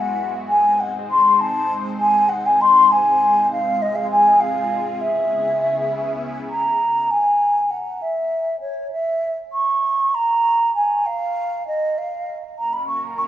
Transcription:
Already playing: G#3 B3 E4 F#4 F#5
0.49 G#3 C4 D#4 C5 G#5
0.80 F#5
1.11 C6
1.41 A5
2.00 G#5
2.29 F#5
2.46 G#5
2.61 C6
2.92 G#5
3.49 G#3 C4 F4 G#4 F5
3.82 D#5
3.95 F5
4.11 G#5
4.40 F5
5.00 C#3 B3 C#4 E4 G#4 E5
6.50 A#5
7.11 G#5
7.71 F#5
8.02 E5
8.61 C#5
8.92 E5
9.53 C#6
10.15 A#5
10.75 G#5
11.06 F5
11.68 D#5
11.98 F5
12.56 A#3 C#4 F#4 A#4 A#5
12.73 B5
12.88 C#6
13.18 C#6

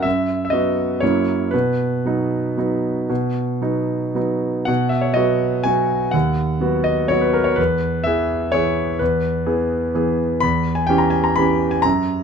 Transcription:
0.02 F#2 E5
0.45 E5
0.50 F#3 B3 F#4 D#5
1.00 F#2 F#3 A#3 E4 C#5
1.51 B2 B4
2.05 F#3 B3 D#4
2.57 F#3 B3 D#4
3.10 B2
3.62 F#3 B3 D#4
4.15 F#3 B3 D#4
4.65 B2 F#5
4.89 E5
5.01 C#5
5.14 F#3 B3 F#4 D#5
5.63 F#3 B3 F#4 G#5
6.11 D#2 F#5
6.61 F#3 B3 F#4
6.84 D#5
7.08 F#3 B3 F#4 C#5
7.21 B4
7.33 A#4
7.44 C#5
7.56 E2 B4
8.04 E3 B3 G#4 E5
8.52 E3 B3 G#4 C#5
8.99 E2 B4
9.46 E3 B3 G#4
9.95 E3 B3 G#4
10.40 E2 B5
10.75 G#5
10.87 E3 C#4 G4 G5
10.98 A#5
11.10 G#5
11.24 A#5
11.36 E3 C#4 G4 B5
11.71 G#5
11.82 F#2 A#5

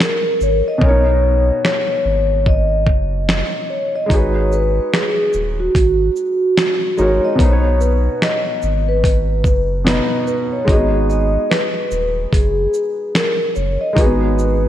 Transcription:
Already playing: G#3 B3 D#4 F#4 G#4
0.00 A#4, finger snap, snare, closed hi-hat
0.41 G#1 C#5, shaker
0.68 D#5
0.78 B2 B3, kick
0.82 B1 C#4 A#4 C#5
0.88 D#4 C#5
1.65 C#5, finger snap, snare
2.05 G#1
2.46 D#5, kick
2.87 F#1, kick
3.29 finger snap, snare
3.70 C#5
3.96 D#5
4.06 G#3 D#4, kick
4.11 G#1 F#4 G#4 C#5, closed hi-hat
4.16 B4
4.52 B4, shaker
4.93 G#4, finger snap, snare, closed hi-hat
5.33 D#1, shaker
5.60 F#4
5.75 G#1, kick, closed hi-hat
6.16 shaker
6.58 finger snap, snare, closed hi-hat
6.97 G#1 G#3 D#4 F#4 A#4 C#5, shaker
7.02 C#5
7.24 D#5
7.35 B2 B3, kick
7.40 B1 D#4 B4 C#5, closed hi-hat
7.45 C5
7.52 C#5
7.81 B4, shaker
8.22 D#5, finger snap, snare, closed hi-hat
8.62 G#1, shaker
8.89 B4
9.04 kick, closed hi-hat
9.44 F#1, kick, shaker
9.84 B2 B3 D#4, finger snap, snare, closed hi-hat
9.89 B4 D#5
10.27 B4, shaker
10.52 C#5
10.65 G#1 G#3 D#4, kick
10.69 F#4 G#4 D#5, closed hi-hat
10.75 B3
11.10 D#5, shaker
11.50 B4, finger snap, snare, closed hi-hat
11.91 D#1, shaker
12.32 F#1 G#4, kick, closed hi-hat
12.74 shaker
13.15 A#4, finger snap, snare, closed hi-hat
13.55 F#1 C#5, shaker
13.81 D#5
13.93 G#3 D#4, kick
13.97 G#1 F#4 G#4 B4, closed hi-hat
14.03 B3
14.39 shaker

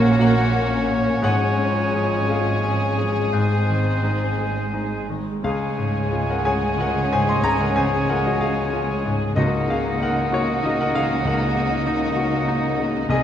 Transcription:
Already playing: A#1 A#2 A#3 C#4 F#4 A#4 C5 C#5 F#5 G#5 A#5
0.19 F#4 A#4 F#5
0.53 C#4
0.87 A#2
1.22 G#1 G#2 F3 G#3 G#4 C#5 F#5 G#5
1.57 G#3
1.93 C#4
2.29 G#4 F5
2.64 C#4
2.98 G#3
3.32 G#2 G#3 C4 C5
3.69 D#3
4.04 D#4
4.39 G#4
4.74 D#4
5.09 D#3
5.44 C#2 C#3 G#3 C#4 G#4 C#5 F5 G#5
5.78 G#2
6.12 F4
6.30 A#4 F#5
6.44 G#3 C#4 G#4 C#5 G#5
6.78 F4 A#4 F#5
7.11 G#2 C5 G#5
7.29 D#5 C6
7.43 C#2 C#5 A#5
7.61 A#4 F#5
7.76 C#4 C5 G#5
8.09 F4 A#4 F#5
8.26 F#4 D#5
8.41 G#3 C#4 G#4 F5
8.73 F4
9.05 G#2
9.35 C#2 C#3 A#3 D#4 F#4 A#4 D#5 F#5
9.68 C#3 G#4 F5
10.00 D#4 A#4 F#5
10.32 A#3 D#4 F#4 C#5
10.63 D#4 F#4 D#5
10.81 A#4 F#5
10.94 C#3 G#4 F5
11.23 C#2 A#3 D#4 F#5
11.29 A#4
11.55 A#3
11.87 D#4
12.17 F#4
12.48 D#4
12.78 C#3
13.08 C2 C3 G#3 D#4 G#4 D#5 G#5

